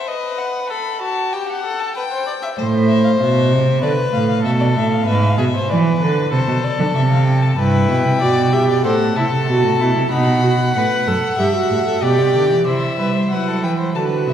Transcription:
0.07 B4 D#5
0.39 F#5
0.70 A4 B5
1.02 F#4 A5
1.33 G4 G5
1.49 F#5
1.64 A4
1.80 A5
1.95 B4 G5
2.12 C5
2.27 D5
2.42 E5
2.58 A2 C5
2.88 E5
3.04 F5
3.20 B2 E5
3.51 C3
3.82 D3 B4 D5
4.13 A2 F5
4.29 F5
4.44 B2 A4 E5
4.60 D5
4.75 A2 E5
4.92 F5
5.06 G#2 B4 E5
5.15 F5
5.23 E5
5.30 F5
5.38 B2 G#4 E5
5.54 C5
5.69 E3 B4 D5
6.01 D3 B4
6.32 C3 A4 C5
6.48 B2
6.64 D5
6.79 D3
6.95 C3 E5
7.11 F5
7.27 G5
7.42 A5
7.58 G2 E4 B4 G5
7.89 B2
8.05 C3
8.21 B2 F#4 D5
8.53 G4 E5
8.69 D5
8.84 A2 A4 C5 F#5
9.16 C3 E4 A4 A5
9.32 C3
9.48 B2 F#4
9.63 A2
9.79 B2 E4
9.95 C3
10.11 B2 D#4 F#5 B5
10.43 F#4
10.75 A2 B4 F#5
11.07 F#2 A4
11.39 G2 G4 E5
11.55 F#4
11.71 A2
11.87 A4
12.02 B2 G4 D5 G5
12.18 C3
12.35 D3
12.51 E3
12.67 C3 E4 C5 E5
12.99 G3 B4
13.16 C5
13.31 F#3 E4 B4 F#5
13.48 A4
13.63 E3 B4 G5
13.80 C5
13.95 D3 F#4 B4 A5
14.27 C3 E5

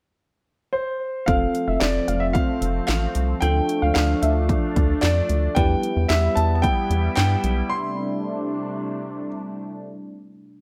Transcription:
0.73 C5
1.26 F1 F3 A3 C4 F4 A4 F5, kick, closed hi-hat
1.55 closed hi-hat
1.68 F1 E5
1.80 F1 D5, snare, closed hi-hat
2.08 F1 F5, closed hi-hat
2.20 E5
2.33 F5, kick, closed hi-hat
2.62 F1, closed hi-hat
2.87 A1 F5, snare, clap, closed hi-hat
3.15 C2, closed hi-hat
3.41 D2 A3 D4 F4 A4 G5, closed hi-hat
3.69 closed hi-hat
3.82 D2 F5
3.94 D2 F5, snare, closed hi-hat
4.22 D2 E5, closed hi-hat
4.49 kick, closed hi-hat
4.76 D2, kick, closed hi-hat
5.01 F2 D5, snare, clap, closed hi-hat
5.29 D2, closed hi-hat
5.55 E2 G3 B3 E4 G4 B4 G5, kick, closed hi-hat
5.83 closed hi-hat
5.97 E2
6.09 E2 E5, snare, closed hi-hat
6.35 E2 A5, closed hi-hat
6.55 A5
6.62 G5, kick, closed hi-hat
6.90 E2, closed hi-hat
7.16 G2 G5, snare, clap, closed hi-hat
7.44 B1, closed hi-hat
7.70 C3 A3 D4 C6

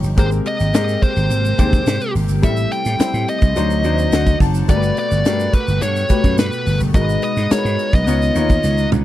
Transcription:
Already playing: F3 C#4 D#4 G4
0.03 G1, shaker
0.17 G#1 C3 G#3 A#3 G4 A#4 C5, kick, closed hi-hat, shaker
0.24 C4
0.31 shaker
0.46 D#5, closed hi-hat
0.60 G#1, snare, shaker
0.74 G#2 G#3 C4 G4 A#4 D#5, snare, closed hi-hat, shaker
0.88 shaker
1.02 C5, kick, closed hi-hat
1.16 G#1, snare, shaker
1.30 G#1, closed hi-hat, shaker
1.45 shaker
1.58 D#2 G#3 C4 G4 C5, kick, closed hi-hat, shaker
1.73 kick, shaker
1.86 G#2, snare, closed hi-hat, shaker
2.01 shaker
2.15 G#1, open hi-hat, shaker
2.28 G1, shaker
2.42 A1 G3 A3 B3 E4 A4 E5, kick, closed hi-hat, shaker
2.49 C4
2.57 shaker
2.72 G5, closed hi-hat
2.85 A2, snare, shaker
2.99 G3 C4 E4 C5 G5, muted slap bass stroke, snare, closed hi-hat, shaker
3.14 A2, shaker
3.28 D#5, closed hi-hat
3.42 C2, kick, shaker
3.56 D2 D#3 F#3 C4 D4 D#4 C5 F#5, closed hi-hat, shaker
3.71 shaker
3.84 D#2 F#3 D4 D#4 C5, closed hi-hat, shaker
3.99 shaker
4.12 D2 F#5, snare, closed hi-hat, shaker
4.27 kick, shaker
4.40 F#1 A5, kick, open hi-hat, shaker
4.54 shaker
4.68 G1 B2 A3 F#4 G4 A#4 D5, kick, closed hi-hat, shaker
4.76 B4
4.83 shaker
4.97 D5, closed hi-hat
5.11 G1, snare, shaker
5.25 G2 A3 F#4 G4 A#4, snare, closed hi-hat, shaker
5.33 B4
5.40 shaker
5.53 B4, kick, closed hi-hat
5.68 G1, shaker
5.82 G2 C#5, closed hi-hat, shaker
5.96 shaker
6.09 A3 F#4 G4 B4, kick, closed hi-hat, shaker
6.24 F#2, kick, shaker
6.38 G2 B4, snare, closed hi-hat, shaker
6.52 shaker
6.66 G1, open hi-hat, shaker
6.80 F#1, shaker
6.94 G#1 G#3 D#4 F#4 A#4 D#5, kick, closed hi-hat, shaker
7.01 B4
7.09 shaker
7.22 D#5, closed hi-hat
7.37 G#2, snare, shaker
7.50 G#3 D#4 F#4 A#4 C#5, muted slap bass stroke, snare, closed hi-hat, shaker
7.58 B4
7.65 G#2, shaker
7.79 closed hi-hat
7.93 B1 D#5, kick, snare, shaker
8.07 C#2 D#3 B3 D#4 F4 C#5, closed hi-hat, shaker
8.22 snare, shaker
8.35 D#2 B3 D#4 F4 C#5, closed hi-hat, shaker
8.49 kick, shaker
8.64 C#2, snare, shaker
8.78 shaker
8.92 C#2, mid tom, shaker

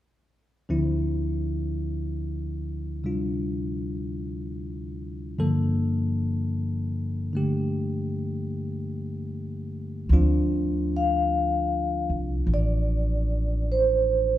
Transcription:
0.69 D2 D3 F3 C4 E4
3.04 C3 G3 D4 F4
5.38 G2 D3 F3 A#3 A4
7.33 D3 A3 G4
10.09 D2 F3 C4 D4
10.14 F4
10.97 F5
12.10 C2
12.47 A1
12.54 D5
13.72 C5

